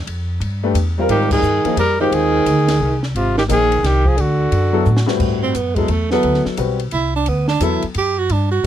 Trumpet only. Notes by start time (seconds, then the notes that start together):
1.10 G4
1.33 G#4
1.79 A#4
2.01 G4
2.14 G#4
3.16 F4
3.39 G4
3.52 G#4
3.86 G4
4.08 G#4
4.21 F#4